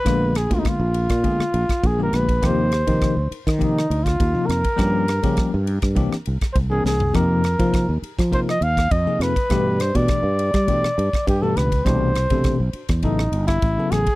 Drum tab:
RD |x-xxx-xxx-xxx-xx|x-xxx-xxx-xxx-xx|x-xxx-xxx-xxx---|x-xxx-xxx-xxx-xx|
SD |r-r-r--r-r-r--r-|r-r-r--r-r-r--r-|r-r-r--r-r-r--o-|r-r-r--r-r-r--r-|
FT |----------------|----------------|---------------o|----------------|
BD |o--oo--oo--oo--o|o--oo--oo--oo--o|o--oo--oo--oo---|o--oo--oo--oo--o|

RD |x-xxx-xxx-xxx-xx|x-xxx-xxx-xxx-xx|
SD |r-r-r--r-r-r--r-|r-r-r--r-r-r--r-|
FT |----------------|----------------|
BD |o--oo--oo--oo--o|o--oo--oo--oo--o|